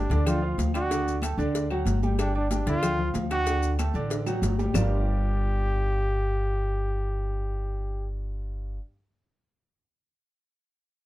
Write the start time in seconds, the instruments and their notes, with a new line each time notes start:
Already playing: trombone D4
0.10 upright bass D2, grand piano D3 D4 D5, cowbell, maracas
0.26 trombone F4, cowbell, high conga, low conga, low agogo, claves, maracas
0.42 grand piano F3 F4 F5, high conga
0.58 upright bass D2, cowbell, high conga, low timbale, low agogo, maracas
0.74 grand piano D4 D5 D6, trombone F#4, cowbell, low agogo, claves, maracas
0.91 grand piano D3 D4 D5, cowbell, high conga, low agogo, maracas
1.06 high conga, maracas
1.22 grand piano A3 A4 A5, cowbell, high conga, low timbale, low agogo, claves, maracas
1.38 upright bass D2, grand piano D3 D4 D5, high conga, low agogo, maracas
1.55 cowbell, high conga, maracas
1.70 grand piano F#3 F#4 F#5, high conga, low agogo, claves
1.85 upright bass G1, cowbell, high conga, low timbale, maracas
2.03 grand piano G3 G4 G5, high conga, low agogo, maracas
2.18 trombone D4, cowbell, high conga, low agogo, claves, maracas
2.35 grand piano D4 D5 D6, trombone D4, high conga, low agogo
2.51 grand piano G3 G4 G5, trombone D4, cowbell, high conga, low timbale, maracas
2.66 upright bass D2, grand piano D3 D4 D5, trombone F4, cowbell, maracas
2.83 cowbell, high conga, low conga, low agogo, claves, maracas
2.99 grand piano F3 F4 F5, high conga, low conga
3.14 upright bass D2, cowbell, high conga, low timbale, low agogo, maracas
3.31 grand piano D4 D5 D6, trombone F#4, cowbell, low agogo, claves, maracas
3.46 grand piano D3 D4 D5, cowbell, high conga, low agogo, maracas
3.63 high conga, maracas
3.79 grand piano A3 A4 A5, cowbell, high conga, low timbale, low agogo, claves, maracas
3.94 upright bass A1, grand piano D3 D4 D5, high conga, low agogo, maracas
4.10 cowbell, high conga, high timbale, maracas
4.26 grand piano F#3 F#4 F#5, high conga, low timbale, low agogo, claves, maracas
4.42 upright bass G1, cowbell, high conga, low timbale, maracas
4.58 grand piano G3 G4 G5, high conga, low timbale, low agogo, maracas
4.74 upright bass G1, grand piano G3 D4 F4 G4 A#4 D5, trombone G4, low bongo, low conga, low timbale, claves, maracas